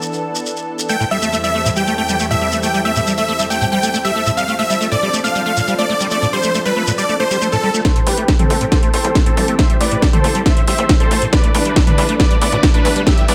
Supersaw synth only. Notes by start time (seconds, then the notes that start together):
0.89 G5
1.11 E5
1.44 E5
1.76 G5
1.98 G5
2.31 E5
2.63 G5
2.85 E5
3.18 E5
3.50 G5
3.72 G5
4.05 E5
4.37 F5
4.59 E5
4.92 D5
5.24 F5
5.46 F5
5.78 D5
6.11 D5
6.33 C5
6.65 B4
6.98 D5
7.20 C5
7.52 A4
7.85 A4 C5
8.07 G4 B4
8.39 C4 A4
8.72 A4 C5
8.94 A4 C5
9.26 C4 A4
9.59 C5 E5
9.80 B4 D5
10.13 A4 C5
10.46 C5 E5
10.68 C5 E5
11.00 A4 C5
11.33 B4 D5
11.55 D4 B4
11.87 D4 B4
12.20 B4 D5
12.42 B4 D5
12.74 D4 B4
13.07 G4 E5
13.28 B4 D5